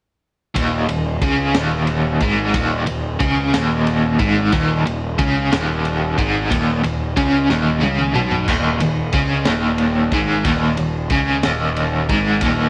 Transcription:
0.55 picked electric bass D#1, overdriven electric guitar D#2, kick, ride
0.89 picked electric bass D#1, overdriven electric guitar D#2, ride
1.22 picked electric bass C#2, overdriven electric guitar C#3, kick, ride
1.54 picked electric bass D#1, overdriven electric guitar D#2, snare, ride
1.87 ride
2.20 picked electric bass G#1, overdriven electric guitar G#2, kick, ride
2.54 picked electric bass D#1, overdriven electric guitar D#2, kick, ride
2.86 picked electric bass D#1, overdriven electric guitar D#2, ride
3.20 picked electric bass C#2, overdriven electric guitar C#3, kick, ride
3.54 picked electric bass D#1, overdriven electric guitar D#2, snare, ride
3.87 ride
4.19 picked electric bass G#1, overdriven electric guitar G#2, kick, ride
4.52 picked electric bass D#1, overdriven electric guitar D#2, kick, ride
4.85 picked electric bass D#1, overdriven electric guitar D#2, ride
5.18 picked electric bass C#2, overdriven electric guitar C#3, kick, ride
5.51 picked electric bass D#1, overdriven electric guitar D#2, snare, ride
5.85 ride
6.18 picked electric bass G#1, overdriven electric guitar G#2, kick, ride
6.50 picked electric bass D#1, overdriven electric guitar D#2, kick, ride
6.83 picked electric bass D#1, overdriven electric guitar D#2, ride
7.16 picked electric bass C#2, overdriven electric guitar C#3, kick, ride
7.49 picked electric bass D#1, overdriven electric guitar D#2, snare
7.81 picked electric bass C#2, overdriven electric guitar C#3, high tom
7.99 mid tom
8.15 picked electric bass B1, overdriven electric guitar B2, mid tom
8.31 floor tom
8.48 picked electric bass D#1, overdriven electric guitar D#2, kick, splash, crash
8.80 picked electric bass D#1, overdriven electric guitar D#2, ride
9.13 picked electric bass C#2, overdriven electric guitar C#3, kick, ride
9.45 picked electric bass D#1, overdriven electric guitar D#2, snare, ride
9.78 ride
10.12 picked electric bass G#1, overdriven electric guitar G#2, kick, ride
10.45 picked electric bass D#1, overdriven electric guitar D#2, kick, ride
10.77 picked electric bass D#1, overdriven electric guitar D#2, ride
11.10 picked electric bass C#2, overdriven electric guitar C#3, kick, ride
11.43 picked electric bass D#1, overdriven electric guitar D#2, snare, ride
11.76 ride
12.09 picked electric bass G#1, overdriven electric guitar G#2, kick, ride
12.41 picked electric bass D#1, overdriven electric guitar D#2, kick, ride

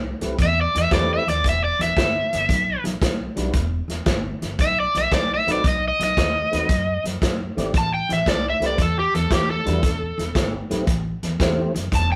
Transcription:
Already playing: upright bass C2
0.21 upright bass C2, tonewheel organ A3 C4 E4 G4 B4, snare, closed hi-hat
0.38 upright bass E2, kick, snare, closed hi-hat
0.43 electric slide guitar E5
0.61 electric slide guitar D5
0.75 upright bass E2, electric slide guitar E5, snare, closed hi-hat
0.91 upright bass E2, tonewheel organ A3 C4 E4 G4 B4, electric slide guitar D5, kick, snare, closed hi-hat
1.13 electric slide guitar E5
1.27 upright bass D#2, electric slide guitar D5, snare, closed hi-hat
1.44 upright bass E1, kick, snare, closed hi-hat
1.49 electric slide guitar E5
1.64 electric slide guitar D5
1.79 upright bass E1, electric slide guitar E5, snare, closed hi-hat
1.97 upright bass G1, kick, snare, closed hi-hat
2.33 upright bass G1, snare, closed hi-hat
2.49 upright bass B1, kick, snare, closed hi-hat
2.84 upright bass B1, snare, closed hi-hat
3.02 upright bass B1, kick, snare, closed hi-hat
3.36 upright bass B1, tonewheel organ G3 D4 E4 F#4 B4, snare, closed hi-hat
3.53 upright bass E1, kick, snare, closed hi-hat
3.88 upright bass E1, snare, closed hi-hat
4.06 upright bass G1, kick, snare, closed hi-hat
4.42 upright bass G1, snare, closed hi-hat
4.59 upright bass B1, electric slide guitar E5, kick, snare, closed hi-hat
4.80 electric slide guitar D5
4.95 upright bass B1, electric slide guitar E5, snare, closed hi-hat
5.12 upright bass B1, electric slide guitar D5, kick, snare, closed hi-hat
5.34 electric slide guitar E5
5.47 upright bass B1, tonewheel organ A3 C4 D#4 F#4 B4, snare, closed hi-hat
5.52 electric slide guitar D5
5.64 upright bass B1, electric slide guitar D#5, kick, snare, closed hi-hat
5.88 electric slide guitar D#5
5.99 upright bass B1, snare, closed hi-hat
6.04 electric slide guitar D#5
6.17 upright bass D#2, kick, snare, closed hi-hat
6.51 upright bass D#2, tonewheel organ A3 C4 D#4 F#4 B4, snare, closed hi-hat
6.69 upright bass F#2, kick, snare, closed hi-hat
7.04 upright bass F#2, snare, closed hi-hat
7.22 upright bass F#2, kick, snare, closed hi-hat
7.57 upright bass G#1, tonewheel organ A3 C4 E4 G4 D5, snare, closed hi-hat
7.73 upright bass A1, kick, snare, closed hi-hat
7.78 electric slide guitar A5
7.94 electric slide guitar G5
8.09 upright bass A1, electric slide guitar E5, snare, closed hi-hat
8.26 upright bass C2, electric slide guitar D5, kick, snare, closed hi-hat
8.50 electric slide guitar E5
8.60 upright bass C2, tonewheel organ A3 C4 E4 G4 B4, snare, closed hi-hat
8.66 electric slide guitar D5
8.78 upright bass E2, kick, snare, closed hi-hat
8.82 electric slide guitar A4
8.99 electric slide guitar G4
9.15 upright bass E2, electric slide guitar A4, snare, closed hi-hat
9.31 upright bass E2, electric slide guitar G4, kick, snare, closed hi-hat
9.51 electric slide guitar A4
9.65 upright bass E2, tonewheel organ G3 D4 E4 F#4 B4, snare, closed hi-hat
9.83 upright bass E1, kick, snare, closed hi-hat
10.18 upright bass E1, snare, closed hi-hat
10.35 upright bass G1, kick, snare, closed hi-hat
10.70 upright bass B1, tonewheel organ A3 C4 E4 G4 B4, snare, closed hi-hat
10.87 upright bass A1, kick, snare, closed hi-hat
11.23 upright bass E2, snare, closed hi-hat
11.39 upright bass E2, tonewheel organ A3 C4 E4 G4 C5, kick, snare, closed hi-hat
11.74 upright bass F#1, snare, closed hi-hat
11.92 upright bass E1, electric slide guitar A5, kick, snare, closed hi-hat
12.12 electric slide guitar G5

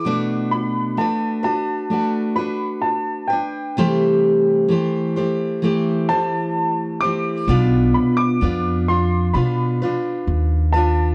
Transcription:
Already playing: upright piano D6
0.05 steel-string acoustic guitar B2 A3 D4 F#4 B4
0.51 upright piano B5
0.97 steel-string acoustic guitar A3 D4 F#4 B4, upright piano A5
1.43 steel-string acoustic guitar D4 F#4 B4, upright piano A5
1.90 steel-string acoustic guitar A3 D4 F#4 B4
2.36 steel-string acoustic guitar D4 F#4 B4, upright piano B5
2.82 upright piano A5
3.28 steel-string acoustic guitar B4, upright piano G5
3.33 steel-string acoustic guitar D4
3.77 steel-string acoustic guitar C3 E3 G3 A3 G4 C5
4.69 steel-string acoustic guitar E3 A3 G4 C5
5.16 steel-string acoustic guitar E3 A3 G4 C5
5.62 steel-string acoustic guitar E3 A3 G4 C5
6.09 steel-string acoustic guitar E3 A3 G4 C5, upright piano A5
7.01 steel-string acoustic guitar A3 G4 C5, upright piano D6
7.05 steel-string acoustic guitar E3
7.48 upright bass B1, steel-string acoustic guitar B2 B3 D4 F4 B4
7.94 upright piano B5
8.17 upright piano D6
8.41 upright bass F2, steel-string acoustic guitar B3 D4 F4 B4
8.88 steel-string acoustic guitar D4 F4, upright piano C6
9.33 upright bass B2, steel-string acoustic guitar B3 D4 F4 B4, upright piano B5
9.82 steel-string acoustic guitar D4 F4 B4
10.27 upright bass D#2
10.73 steel-string acoustic guitar F4 B4, upright piano A5
10.77 steel-string acoustic guitar D4

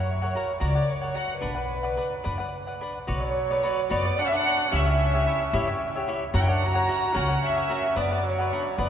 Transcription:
Already playing: upright bass F#2, cavaquinho A#4 C#5 F#5, violin section C#5
0.22 cavaquinho A#4 C#5 F#5
0.35 cavaquinho F#4 A#4 C#5 F#5
0.60 upright bass C#2, cavaquinho F#4 A#4 C#5 F#5, violin section D5
0.75 cavaquinho A#4 C#5 F#5
0.89 violin section C#5
1.02 cavaquinho A#4 C#5 F#5
1.14 cavaquinho F#4 A#4 C#5 F#5, violin section F#5
1.40 upright bass B1, cavaquinho D4 B4 D5 F#5, violin section B4
1.55 cavaquinho B4 D5 F#5
1.83 cavaquinho B4 D5 F#5
1.96 cavaquinho D4 B4 D5 F#5
2.24 upright bass F#2, cavaquinho D4 B4 D5 F#5
2.38 cavaquinho B4 D5 F#5
2.67 cavaquinho B4 D5 F#5
2.81 cavaquinho D4 B4 D5 F#5
3.07 upright bass B1, trumpet F#3, cavaquinho F#4 B4 C#5 D5, violin section C#5
3.21 cavaquinho B4 C#5 D5
3.50 cavaquinho B4 C#5 D5
3.63 cavaquinho F#4 B4 C#5 D5
3.90 upright bass F#2, trumpet B3, cavaquinho F#4 B4 C#5 D5, violin section D5
4.05 cavaquinho B4 C#5 D5
4.19 trumpet D4, violin section F#5
4.25 trumpet C#4, violin section E5
4.32 trumpet D4, cavaquinho B4 C#5 D5, violin section F#5
4.45 cavaquinho F#4 B4 C#5 D5
4.69 trumpet C#4, cavaquinho E4 G4 C#5
4.73 upright bass C#2, cavaquinho E5, violin section E5
4.86 cavaquinho G4 C#5 E5
5.13 cavaquinho G4 C#5 E5
5.26 cavaquinho E4 G4 C#5 E5
5.53 upright bass G2, cavaquinho E4 G4 C#5 E5
5.67 cavaquinho G4 C#5 E5
5.95 cavaquinho G4 C#5 E5
6.08 cavaquinho E4 G4 C#5 E5
6.34 upright bass F#2, trumpet C#4, cavaquinho F#4 A#4 C#5 F#5, violin section F#5
6.38 trumpet E4, violin section G5
6.45 trumpet D4, cavaquinho A#4 C#5 F#5
6.51 violin section F#5
6.62 trumpet F#4, violin section A#5
6.74 cavaquinho A#4 C#5 F#5
6.88 cavaquinho F#4 A#4 C#5 F#5
7.13 upright bass C#2, trumpet C#4, cavaquinho F#4 A#4 C#5 F#5, violin section F#5
7.28 cavaquinho A#4 C#5 F#5
7.42 trumpet C#4, violin section E5
7.56 cavaquinho A#4 C#5 F#5
7.69 cavaquinho F#4 A#4 C#5 F#5
7.96 upright bass F#2, trumpet B3, cavaquinho D4 B4 D5 F#5, violin section D5
8.11 cavaquinho B4 D5 F#5
8.22 trumpet F#3
8.28 violin section C#5
8.38 cavaquinho B4 D5 F#5
8.53 cavaquinho D4 B4 D5 F#5
8.78 upright bass F#2, trumpet B3, cavaquinho D4 B4 D5 F#5, violin section D5

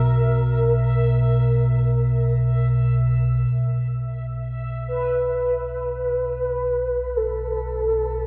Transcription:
Already playing: synth drone B1 B2, soft synth lead A#4, synth texture E5
3.47 synth drone B1 B2
4.88 soft synth lead B4
5.34 soft synth lead B4
7.17 soft synth lead A4

